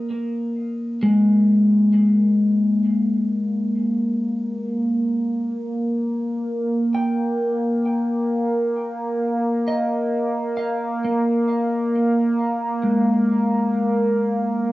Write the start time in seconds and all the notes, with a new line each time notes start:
Already playing: A#3 F5
1.03 G#3
6.95 G5
9.68 D#5
10.57 F5
11.04 A#3
12.83 G#3